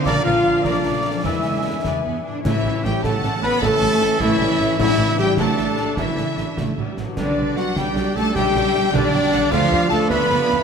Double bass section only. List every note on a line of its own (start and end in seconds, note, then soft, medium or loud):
0.07 0.14 A#1 loud
0.26 0.34 A#1 medium
0.45 0.53 A#1 medium
0.65 0.73 A#1 medium
0.85 0.93 A#1 medium
1.25 1.33 E2 medium
1.46 1.54 E2 medium
1.65 1.73 E2 medium
1.85 1.93 E2 medium
2.05 2.13 E2 soft
2.46 2.54 A1 medium
2.65 2.73 A1 medium
2.84 2.92 A1 medium
3.04 3.12 A1 medium
3.23 3.31 A1 medium
3.42 3.50 A1 medium
3.62 3.70 A1 loud
3.82 3.89 A1 medium
4.02 4.09 A1 medium
4.20 4.28 A1 loud
4.40 4.48 A1 medium
4.58 4.66 A1 medium
4.78 4.86 A1 loud
4.98 5.06 A1 medium
5.19 5.26 A1 medium
5.38 5.46 A1 loud
5.59 5.67 A1 medium
5.78 5.86 A1 medium
5.97 6.05 A1 medium
6.18 6.26 A1 medium
6.38 6.46 A1 medium
6.58 6.66 A1 medium
6.78 6.86 A1 soft
6.97 7.05 A1 medium
7.16 7.24 B1 medium
7.37 7.45 B1 medium
7.56 7.64 B1 medium
7.76 7.84 B1 loud
7.95 8.03 B1 medium
8.15 8.23 B1 medium
8.35 8.43 B1 loud
8.54 8.62 B1 medium
8.74 8.82 B1 medium
8.94 9.01 B1 loud
9.13 9.21 B1 medium
9.33 9.40 B1 medium
9.53 9.60 D2 loud
9.72 9.79 D2 medium
9.90 9.98 D2 medium
10.10 10.18 D2 loud
10.30 10.38 D2 medium
10.51 10.59 D2 medium